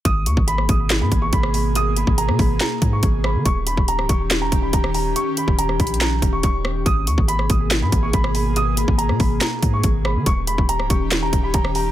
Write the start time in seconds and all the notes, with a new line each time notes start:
0.05 G#1 B2 A#3 G#4 D#6, kick, closed hi-hat
0.26 D#2 C#6, closed hi-hat
0.37 G#1, kick
0.48 B5, closed hi-hat
0.58 cross-stick
0.69 G#1 D#6, kick, closed hi-hat
0.90 snare, clap, closed hi-hat
1.01 G#2 B5
1.12 G#1, kick, closed hi-hat
1.22 C#6
1.33 G#1 B5, kick, closed hi-hat
1.43 cross-stick
1.54 B5, open hi-hat
1.75 D#6, closed hi-hat
1.96 B5, closed hi-hat
2.07 G#1, kick
2.18 A#5, closed hi-hat
2.29 B2, cross-stick
2.39 G#1 B5, kick, open hi-hat
2.60 A#5, snare, clap, closed hi-hat
2.82 G#2, kick, closed hi-hat
2.93 C#6
3.03 G#1, kick, closed hi-hat
3.24 B5, cross-stick
3.35 D#3
3.45 D#1 D#3 C#4 G4 C#6, kick, closed hi-hat
3.67 B5, closed hi-hat
3.77 D#1, kick
3.88 A#5, closed hi-hat
3.99 C#1, cross-stick
4.09 D#1 C#6, kick, closed hi-hat
4.31 snare, clap, closed hi-hat
4.42 A#5
4.52 D#1, kick, closed hi-hat
4.62 B5
4.73 D#1 A#5, kick, closed hi-hat
4.84 cross-stick
4.94 A#5, open hi-hat
5.16 C#6, closed hi-hat
5.37 B5, closed hi-hat
5.48 D#1, kick
5.59 A#5, closed hi-hat
5.69 cross-stick
5.80 A#1 B5, kick, closed hi-hat
5.87 closed hi-hat
5.94 closed hi-hat
6.01 A#5, snare, clap, closed hi-hat
6.22 D#1, kick, closed hi-hat
6.33 C#6
6.43 D#1 C#6, kick, closed hi-hat
6.65 cross-stick
6.86 G#1 B2 A#3 G#4 D#6, kick, closed hi-hat
7.07 D#2 C#6, closed hi-hat
7.18 G#1, kick
7.28 B5, closed hi-hat
7.39 cross-stick
7.50 G#1 D#6, kick, closed hi-hat
7.71 snare, clap, closed hi-hat
7.82 G#2 B5
7.92 G#1, kick, closed hi-hat
8.03 C#6
8.13 G#1 B5, kick, closed hi-hat
8.24 cross-stick
8.35 B5, open hi-hat
8.56 D#6, closed hi-hat
8.77 B5, closed hi-hat
8.88 G#1, kick
8.98 A#5, closed hi-hat
9.09 B2, cross-stick
9.20 G#1 B5, kick, open hi-hat
9.41 A#5, snare, clap, closed hi-hat
9.63 G#2, kick, closed hi-hat
9.73 C#6
9.84 G#1, kick, closed hi-hat
10.05 B5, cross-stick
10.16 D#3
10.26 D#1 D#3 C#4 G4 C#6, kick, closed hi-hat
10.47 B5, closed hi-hat
10.58 D#1, kick
10.69 A#5, closed hi-hat
10.80 C#1, cross-stick
10.90 D#1 C#6, kick, closed hi-hat
11.11 snare, clap, closed hi-hat
11.22 A#5
11.33 D#1, kick, closed hi-hat
11.43 B5
11.54 D#1 A#5, kick, closed hi-hat
11.65 cross-stick
11.75 A#5, open hi-hat